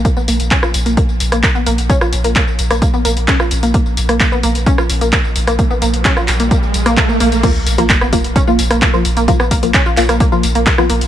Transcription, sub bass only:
\new Staff \with { instrumentName = "Sub bass" } { \clef bass \time 4/4 \key bes \phrygian \tempo 4 = 130 r16 bes,,16 bes,,16 bes,,16 r16 bes,,16 bes,,16 bes,,16 r16 bes,,16 bes,,16 bes,,16 r16 bes,,16 bes,,16 bes,,16 | r16 bes,,16 bes,,16 bes,,16 r16 bes,,16 bes,,16 bes,,16 r16 bes,,16 bes,,16 bes,,16 r16 bes,,16 bes,,16 bes,,16 | r16 bes,,16 bes,,16 bes,,16 r16 bes,,16 bes,,16 bes,,16 r16 bes,,16 bes,,16 bes,,16 r16 bes,,16 bes,,16 bes,,16 | r16 bes,,16 bes,,16 bes,,16 r16 bes,,16 bes,,16 bes,,16 r16 bes,,16 bes,,16 bes,,16 r16 bes,,16 bes,,16 bes,,16 |
r16 bes,,16 bes,,16 bes,,16 r16 bes,,16 bes,,16 bes,,16 r16 bes,,16 bes,,16 bes,,16 r16 bes,,16 bes,,16 bes,,16 | r16 bes,,16 bes,,16 bes,,16 r16 bes,,16 bes,,16 bes,,16 r16 bes,,16 bes,,16 bes,,16 r16 bes,,16 bes,,16 bes,,16 | }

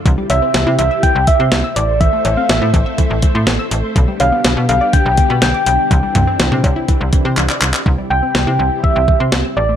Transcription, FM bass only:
\new Staff \with { instrumentName = "FM bass" } { \clef bass \time 4/4 \key c \major \tempo 4 = 123 c,16 r16 c,16 r16 c,16 c16 c,16 r8 c,16 r16 c16 c,16 r16 a,,8~ | a,,16 r16 a,,16 r16 a,,16 a,16 a,,16 r8 a,,16 r16 a,16 a,,16 r16 a,,16 r16 | b,,16 r16 b,,16 r16 b,,16 b,16 b,,16 r8 b,,16 r16 b,16 b,,16 r16 b,,16 r16 | c,16 r16 c,16 r16 c,16 c16 c,16 r8 c,16 r16 c16 c,16 r16 c,16 r16 |
c,16 r16 c,16 r16 c,16 c16 c,16 r8 c,16 r16 c16 c,16 r16 a,,8 | }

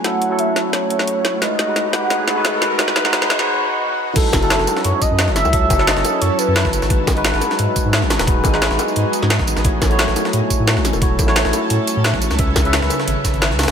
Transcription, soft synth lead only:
\new Staff \with { instrumentName = "Soft synth lead" } { \time 4/4 \key fis \dorian \tempo 4 = 175 fis''4 e''4 cis''2 | dis''4. fis''2 r8 | r1 | a'2 cis''8 dis''4 e''8~ |
e''4 dis''4 cis''8 b'4.~ | b'8 r2. r8 | r1 | r1 |
r1 | r1 | }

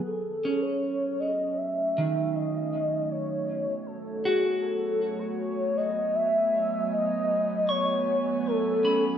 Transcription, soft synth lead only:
\new Staff \with { instrumentName = "Soft synth lead" } { \time 3/4 \key a \lydian \tempo 4 = 78 a'8. cis''8. dis''8 e''4 | dis''4 cis''4 a'8 gis'8 | a'8. cis''8. dis''8 e''4 | dis''4 cis''4 a'8. r16 | }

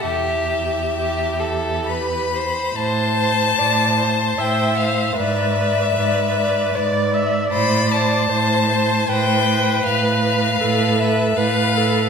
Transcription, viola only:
\new Staff \with { instrumentName = "Viola" } { \time 3/4 \key e \minor \tempo 4 = 76 g'2~ g'8 r8 | \key a \minor c''4 d''8 c''8 e''4 | b'4 b'4 d''8 e''8 | d''4 c''8 c''8 b'4~ |
b'4 a'4 b'8 a'8 | }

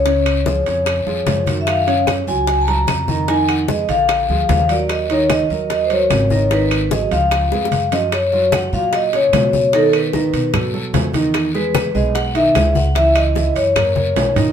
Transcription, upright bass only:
\new Staff \with { instrumentName = "Upright bass" } { \clef bass \time 4/4 \key ges \major \tempo 4 = 149 des,4. f,4 f,8 ges,4~ | ges,4. des,4. f,4~ | f,4. bes,,4 d,8 ees,4~ | ees,4. ees,4. aes,,4~ |
aes,,4. des,4 f,8 ges,4~ | ges,4. bes,4. ces4~ | ces4. b,4. fes,4~ | fes,4. b,,4. des,4~ |
des,4. ges,4. ces,4 | }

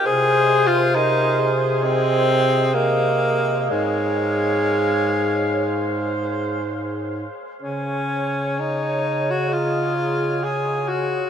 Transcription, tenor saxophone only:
\new Staff \with { instrumentName = "Tenor saxophone" } { \time 4/4 \key aes \mixolydian \tempo 4 = 64 \tuplet 3/2 { aes'4 f'8 } ees'8. r16 c'4 bes4 | aes2. r4 | des'4 ees'8. ges'16 f'4 aes'8 ges'8 | }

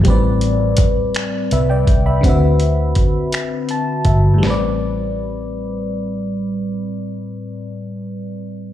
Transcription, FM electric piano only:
\new Staff \with { instrumentName = "FM electric piano" } { \time 6/8 \key a \minor \tempo 4. = 55 << { r2 <b' e''>16 <d'' g''>8 <e'' b''>16~ | <e'' b''>16 r4. r16 a''8 e''8 | r2. | r2. | } \\ { <a, g c' b' d''>2. | <d c' fis' b' e''>2. | <a, g c' b' d''>2.~ | <a, g c' b' d''>2. | } >> }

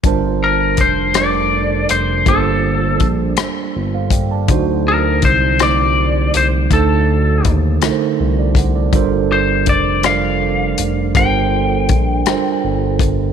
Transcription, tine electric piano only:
\new Staff \with { instrumentName = "Tine electric piano" } { \time 6/8 \key g \minor \tempo 4. = 54 << { r2. | r2 r16 <c'' f''>16 <d'' g''>16 <d'' a''>16~ | <d'' a''>16 r2 r8. | r2 r16 <a' d''>16 <c'' fis''>16 <a' d''>16~ |
<a' d''>16 r2 r8. | r2. | } \\ { <g d' f' bes' c'' a''>4 r8 <g d' f' a' bes' d''>4 r8 | <g bes d' f' a' c''>4 r2 | <d fis ees' fis' c''>4 r8 <d a ees' fis' c''>4 r8 | <d a ees' fis' a'>4 r8 <d a ees' fis' bes' c''>4 r8 |
<g d' f' a' bes' c''>4 r8 <g d' f' a' bes' d''>4 r8 | <g d' f' a' bes' c''>4 r8 <g d' f' a' bes' c''>4 r8 | } >> }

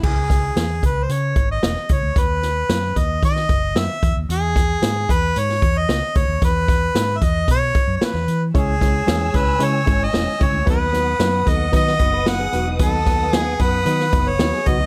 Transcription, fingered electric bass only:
\new Staff \with { instrumentName = "Fingered electric bass" } { \clef bass \time 4/4 \key e \major \tempo 4 = 113 cis,4 e,8 cis,8 cis8 gis,,8 e,,16 r16 cis,16 d,16 | dis,4 fis,8 dis,8 dis8 fis,,8 fis,16 r16 e,16 dis,16 | e,4 gis,8 e,8 gis,8 e,8 cis,16 r16 d,16 dis,16 | e,4 gis,8 e,8 b,8 r16 fis,16 r16 e,16 e8 |
cis,4 e,8 cis,8 cis8 gis,,8 e,,16 r16 cis,16 d,16 | dis,4 fis,8 dis,8 dis8 fis,,4 e,,8 | dis,4. fis,8 dis8 fis,,8 dis,16 r16 cis,16 d,16 | }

